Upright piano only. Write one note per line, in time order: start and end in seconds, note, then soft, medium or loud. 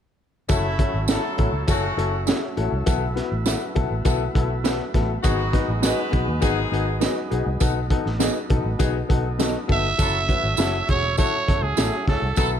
0.48 0.64 C#4 medium
0.48 0.64 E4 medium
0.48 0.64 F#4 medium
0.48 0.64 A4 loud
0.79 0.94 C#4 medium
0.79 0.94 E4 medium
0.79 0.94 F#4 medium
0.79 0.95 A4 medium
1.08 1.24 C#4 medium
1.08 1.24 E4 medium
1.08 1.24 F#4 medium
1.08 1.24 A4 medium
1.38 1.54 C#4 medium
1.38 1.54 E4 medium
1.38 1.54 F#4 medium
1.38 1.54 A4 medium
1.67 1.83 C#4 loud
1.67 1.83 E4 medium
1.67 1.83 F#4 medium
1.67 1.84 A4 loud
1.97 2.13 C#4 medium
1.97 2.13 E4 medium
1.97 2.13 F#4 medium
1.97 2.13 A4 medium
2.26 2.42 C#4 medium
2.26 2.42 E4 medium
2.26 2.42 F#4 medium
2.26 2.42 G#4 medium
2.57 2.72 C#4 medium
2.57 2.72 E4 medium
2.57 2.72 F#4 medium
2.57 2.73 A4 medium
2.86 3.02 B3 medium
2.86 3.02 E4 medium
2.86 3.02 F#4 medium
2.86 3.02 A4 loud
3.16 3.31 B3 medium
3.16 3.31 E4 medium
3.16 3.32 F#4 medium
3.16 3.32 B4 medium
3.46 3.61 B3 medium
3.46 3.61 E4 medium
3.46 3.61 F#4 medium
3.46 3.62 B4 medium
3.75 3.91 B3 medium
3.75 3.91 E4 medium
3.75 3.91 F#4 medium
3.75 3.91 A4 medium
4.05 4.21 B3 loud
4.05 4.21 E4 medium
4.05 4.21 F#4 loud
4.05 4.21 A4 loud
4.35 4.50 B3 medium
4.35 4.51 E4 medium
4.35 4.51 F#4 medium
4.35 4.51 A4 medium
4.64 4.80 B3 medium
4.64 4.80 E4 medium
4.64 4.80 F#4 medium
4.64 4.80 A4 medium
4.94 5.10 B3 medium
4.94 5.10 E4 medium
4.94 5.10 F#4 medium
4.94 5.10 A4 medium
5.23 5.39 B3 medium
5.23 5.39 D#4 medium
5.23 5.39 F#4 medium
5.23 5.39 G#4 loud
5.53 5.69 B3 medium
5.53 5.69 D#4 medium
5.53 5.69 F#4 medium
5.53 5.69 B4 loud
5.82 5.99 B3 medium
5.82 5.98 D#4 medium
5.82 5.99 F#4 medium
5.82 5.99 G#4 medium
6.11 6.28 B3 medium
6.11 6.28 D#4 medium
6.11 6.28 F#4 medium
6.11 6.28 G#4 medium
6.41 6.57 B3 loud
6.41 6.58 D#4 loud
6.41 6.58 F#4 loud
6.41 6.58 G#4 loud
6.72 6.88 B3 medium
6.72 6.88 D#4 medium
6.72 6.88 F#4 medium
6.72 6.88 G#4 medium
7.00 7.17 B3 medium
7.00 7.17 D#4 medium
7.00 7.17 F#4 medium
7.00 7.17 G#4 medium
7.31 7.47 B3 medium
7.31 7.47 D#4 medium
7.31 7.47 F#4 medium
7.31 7.47 G#4 medium
7.60 7.76 B3 medium
7.60 7.77 D#4 medium
7.60 7.77 F#4 medium
7.60 7.77 A4 loud
7.90 8.06 B3 medium
7.90 8.06 D#4 medium
7.90 8.07 F#4 medium
7.90 8.06 A4 medium
8.19 8.36 B3 medium
8.19 8.36 D#4 medium
8.19 8.36 F#4 medium
8.19 8.36 G#4 medium
8.50 8.66 B3 medium
8.50 8.66 D#4 medium
8.50 8.66 F#4 medium
8.50 8.66 A4 medium
8.79 8.95 B3 loud
8.79 8.95 D#4 medium
8.79 8.95 F#4 medium
8.79 8.95 G#4 loud
9.09 9.25 B3 medium
9.09 9.25 D#4 medium
9.09 9.25 F#4 medium
9.09 9.25 A4 medium
9.38 9.55 B3 medium
9.38 9.55 D#4 medium
9.38 9.55 F#4 medium
9.38 9.55 A4 medium
9.68 9.84 B3 medium
9.68 9.84 D#4 medium
9.68 9.84 F#4 medium
9.68 9.85 A4 medium
9.98 10.14 C#4 medium
9.98 10.14 E4 medium
9.98 10.14 F#4 medium
9.98 10.14 A4 medium
10.28 10.44 C#4 medium
10.28 10.44 E4 medium
10.28 10.44 F#4 medium
10.28 10.44 B4 medium
10.58 10.74 C#4 medium
10.58 10.74 E4 medium
10.58 10.74 F#4 medium
10.58 10.74 A4 medium
10.88 11.04 C#4 medium
10.88 11.04 E4 medium
10.88 11.04 F#4 medium
10.88 11.04 G#4 medium
11.18 11.33 C#4 medium
11.18 11.33 E4 medium
11.18 11.33 F#4 medium
11.18 11.34 A4 loud
11.47 11.63 C#4 medium
11.47 11.63 E4 medium
11.47 11.63 F#4 medium
11.47 11.63 A4 medium
11.77 11.93 C#4 medium
11.77 11.93 E4 medium
11.77 11.93 F#4 medium
11.77 11.93 A4 medium
12.07 12.23 C#4 medium
12.07 12.23 E4 medium
12.07 12.23 F#4 medium
12.07 12.23 G#4 medium
12.37 12.52 B3 medium
12.37 12.53 E4 medium
12.37 12.53 F#4 medium
12.37 12.53 A4 medium